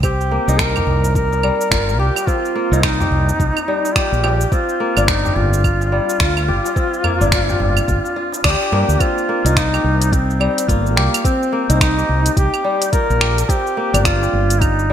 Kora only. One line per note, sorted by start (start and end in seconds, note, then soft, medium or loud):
0.03 1.83 C4 medium
0.31 2.24 A#3 medium
0.48 2.11 D#4 medium
0.76 1.99 G4 medium
1.44 3.67 G3 medium
1.71 3.23 F4 medium
1.99 3.00 G4 medium
2.27 4.07 C4 medium
2.55 4.48 A#3 medium
2.73 4.35 D#4 medium
3.00 4.24 G4 medium
3.68 4.57 G3 medium
3.96 5.47 F4 medium
4.24 5.24 G4 medium
4.52 6.32 C4 medium
4.80 6.73 A#3 medium
4.97 6.65 D4 medium
5.25 6.48 G4 medium
5.92 8.26 G3 medium
6.20 7.72 F4 medium
6.48 7.49 G4 medium
6.76 8.56 C4 medium
7.04 8.72 A#3 medium
7.21 8.44 D4 medium
7.49 8.90 G4 medium
8.16 9.68 F4 medium
8.44 9.51 D4 medium
8.72 9.28 A#3 medium
9.00 10.80 C4 medium
9.29 11.22 A#3 medium
9.45 11.08 D#4 medium
9.73 10.96 G4 medium
10.40 12.63 G3 medium
10.68 12.20 F4 medium
10.96 11.97 G4 medium
11.24 13.04 C4 medium
11.52 13.45 A#3 medium
11.69 13.32 D#4 medium
11.98 13.20 G4 medium
12.64 13.54 G3 medium
12.93 14.44 F4 medium
13.21 14.22 G4 medium
13.49 14.93 C4 medium
13.77 14.93 A#3 medium
13.94 14.93 D4 medium
14.22 14.93 G4 medium
14.90 14.93 G3 medium